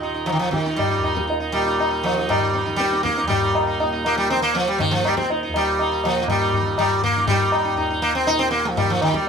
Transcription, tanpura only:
Already playing: D#2 A#2 D#3
0.41 D#3
0.98 D#2
1.53 A#2
2.12 D#3
2.67 D#3
3.23 D#2
3.81 A#2
4.35 D#3
4.92 D#3
5.48 D#2
6.04 A#2
6.61 D#3
7.16 D#3
7.73 D#2
8.28 A#2
8.84 D#3

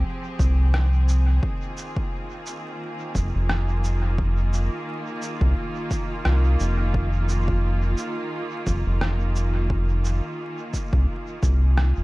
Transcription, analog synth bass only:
0.39 C2
3.15 F1
3.35 F1
5.41 C2
6.26 C2
6.60 F1
8.67 F1
8.86 F1
10.93 C2
11.43 C2
11.97 F1

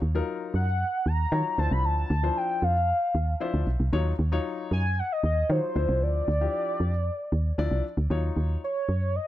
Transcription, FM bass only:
0.02 D#2
0.54 F#2
1.06 D#2
1.32 D#3
1.58 D2
1.71 C2
1.84 D2
2.10 D2
2.62 F2
3.15 D#2
3.54 D2
3.67 B1
3.80 C2
3.93 D#2
4.19 D#2
4.71 F#2
5.23 D#2
5.50 D#3
5.76 D2
5.89 C2
6.02 D2
6.28 D2
6.80 F2
7.32 D#2
7.58 D2
7.71 C2
7.97 D2
8.10 D#2
8.37 D#2
8.89 F#2

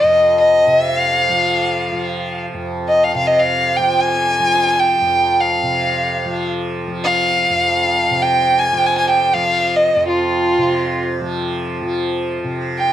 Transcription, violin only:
Already playing: D#5
0.38 D#5
0.75 E5
0.98 F5
2.88 D#5
3.04 F5
3.17 F5
3.27 D#5
3.39 F5
3.76 G5
4.00 G#5
4.80 G5
5.40 F5
7.04 F5
8.22 G5
8.59 G#5
8.74 G5
8.86 G#5
8.98 G#5
9.10 G5
9.34 F5
9.76 D#5
10.09 F4
12.79 G5

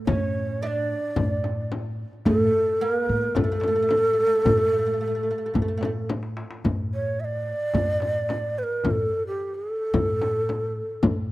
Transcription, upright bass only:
0.07 A2
1.17 A2
2.26 A2
3.09 A2
3.36 A2
4.46 A2
5.55 A2
6.65 A2
7.74 A2
8.84 A2
9.94 A2
11.03 A2

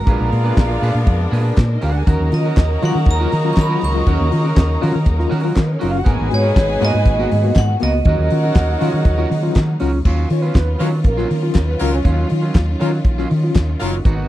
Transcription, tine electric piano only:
2.07 D#3
2.32 C#4 F4
2.82 F#3 C#4 F4
3.20 F#3 C#4 F4
3.32 D#3
3.44 F#3 C#4 F4
3.69 F#3 C#4 F4
3.82 D#3
3.94 F#3 C#4 F4
4.07 D#3
4.32 C#4 F4
4.82 F#3 C#4 F4
5.19 F#3 C#4 F4
5.31 D#3
5.44 F#3 C#4 F4
5.57 D#3
5.81 F#3 C#4 F4
5.94 C#4 F4
6.07 G#2 D#3
6.31 B3 F#4
6.81 A#3 B3 F#4
7.19 A#3 B3 F#4
7.31 G#2 D#3
7.43 A#3 B3 F#4
7.56 G#2 D#3
7.80 A#3 B3 F#4
7.93 B3 F#4
8.06 D#3
8.31 C#4 F4
8.81 F#3 C#4 F4
9.18 F#3 C#4 F4
9.30 D#3
9.43 F#3 C#4 F4
9.56 D#3
9.80 F#3 C#4 F4
9.92 C#4 F4
10.05 D#3
10.30 C#4 F4
10.79 F#3 C#4 F4
11.18 F#3 C#4 F4
11.30 D#3
11.42 F#3 C#4 F4
11.55 D#3
11.81 F#3 C#4 F4
11.94 C#4 F4
12.06 D#3
12.30 C#4 F4
12.80 F#3 C#4 F4
13.18 F#3 C#4 F4
13.31 D#3
13.43 F#3 C#4 F4
13.57 D#3
13.81 F#3 C#4 F4
13.94 C#4 F4
14.06 G#2 D#3

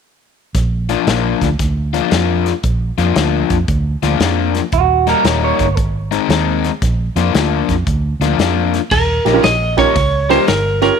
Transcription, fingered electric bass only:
0.55 A#1
1.07 A#1
1.42 D2
1.59 D2
2.12 F2
2.64 A#1
2.98 F2
3.16 D2
3.50 F2
3.68 D2
4.02 D2
4.20 F2
4.73 D#1
5.24 D#1
5.59 G1
5.77 G#1
6.29 D#2
6.82 A#1
7.16 F2
7.34 D2
7.69 F2
7.87 D2
8.20 D2
8.38 F2
8.91 D#1
9.26 A#1
9.44 A#1
9.96 C#2
10.48 G1

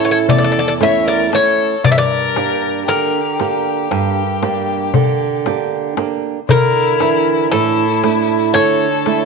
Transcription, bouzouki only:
0.05 C#5
0.11 C#5
0.30 D5
0.38 D5
0.44 D5
0.52 D5
0.59 D5
0.68 D5
0.83 E5
1.08 D5
1.35 C#5
1.85 D5
1.92 E5
1.98 D5
2.89 A#4
6.50 A#4
7.52 A4
8.54 C#5

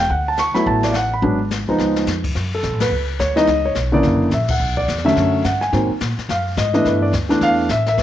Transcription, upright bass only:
0.09 D2
0.55 muted upright bass stroke
0.66 A1
1.22 G#1
1.67 D2
1.78 C#2
2.06 F2
2.35 F#2
2.63 B1
2.72 A1
2.81 F#1
2.90 C#2
3.19 D2
3.47 C#2
3.75 B1
4.03 F#1
4.32 A#1
4.60 B1
4.88 E2
5.16 F#2
5.44 G2
5.73 G#2
5.90 muted upright bass stroke
6.01 A#2
6.18 muted upright bass stroke
6.29 F#2
6.57 G#2
6.85 G2
7.13 D2
7.41 E2
7.69 A1
7.98 G#1

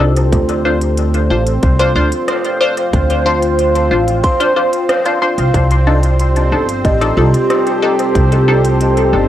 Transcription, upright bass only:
Already playing: C2
0.32 D2
1.30 A1
1.63 C2
1.95 D2
2.93 D2
3.91 A1
5.38 C2
5.54 C2
6.52 G1
6.85 A1
7.17 C2
8.15 C2
9.13 G1

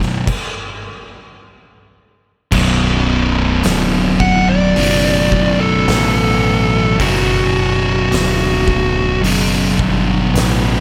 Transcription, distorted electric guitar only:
Already playing: B1 F#2 B2
2.51 B1 F#2 B2
4.76 B1 F#2 B2
6.99 B1 F#2 B2
9.23 B1 F#2 B2

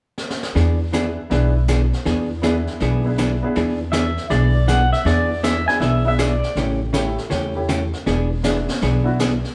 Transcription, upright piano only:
0.92 B3 D4 E4 G#4
1.30 B3 D4 E4 B4
2.42 B3 D4 E4 G#4
3.05 B3 D4 E4 G#4
3.43 B3 D4 E4 G#4
5.68 B3 D4 E4 G#4
6.05 B3 D4 E4 G#4
6.93 A3 C#4 E4 G4
7.55 A3 C#4 E4 G4
8.43 B3 D4 E4 G#4
9.04 B3 D4 E4 F#4

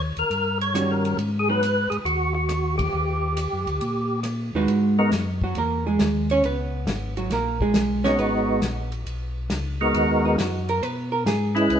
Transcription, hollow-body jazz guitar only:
0.74 D#3 G3 C#4 F#4
1.49 F#3 B3 D#4
4.55 G#3 D#4 F#4 B4
5.44 F#3 F#4
5.58 A#3 A#4
5.87 G#3 G#4
6.31 C#4 C#5
6.45 B3 B4
7.17 F#3 F#4
7.32 A#3 A#4
7.62 G#3 G#4
8.04 C#4 C#5
8.19 B3 B4
10.25 D#4
10.40 F#4
10.69 A#4
10.83 B4
11.12 A#4
11.27 G#4
11.56 E4

